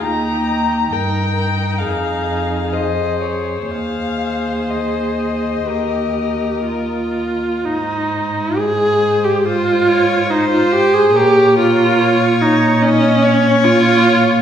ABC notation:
X:1
M:4/4
L:1/16
Q:1/4=68
K:Ab
V:1 name="Violin"
b4 g4 f4 e2 d2 | f4 e8- e2 z2 | c4 c8 c4 | d8 d8 |]
V:2 name="Violin"
G4 B2 B2 A4 c4 | c8 B6- B z | z8 c2 d2 c4 | B4 d4 e2 d6 |]
V:3 name="Viola"
E4 E8 A4 | A8 G4 F4 | E4 A3 G F4 E F G A | G2 F4 E2 D4 F4 |]
V:4 name="Cello" clef=bass
E,,4 G,,4 F,,8 | E,,8 E,,6- E,, z | A,,16 | B,,16 |]